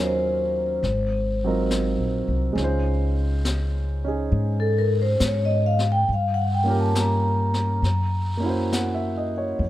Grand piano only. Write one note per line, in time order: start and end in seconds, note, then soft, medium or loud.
0.00 0.83 F#3 soft
0.00 0.83 C#4 soft
0.00 0.83 D#4 soft
0.00 0.83 F4 soft
0.00 0.84 A#4 medium
1.44 2.58 F#3 soft
1.44 2.58 C4 soft
1.44 2.57 D#4 soft
1.44 2.59 F4 soft
1.44 2.59 A#4 medium
2.53 6.05 G#3 medium
2.53 4.03 C#4 soft
2.58 4.04 D#4 soft
2.58 6.09 F4 soft
2.64 6.11 C5 medium
4.04 6.07 C#4 soft
4.04 6.08 D#4 soft
4.04 6.09 G#4 soft
6.64 7.81 A#3 soft
6.64 7.82 C#4 soft
6.64 7.82 F4 soft
6.68 7.83 G4 soft
6.68 7.84 A#4 soft
8.37 9.57 A#3 soft
8.37 9.58 C#4 soft
8.43 9.60 E4 soft
8.43 9.61 F#4 soft
8.49 9.62 C5 soft
8.73 9.14 F#5 soft
8.94 9.32 E5 soft
9.17 9.43 D#5 soft
9.38 9.68 C#5 soft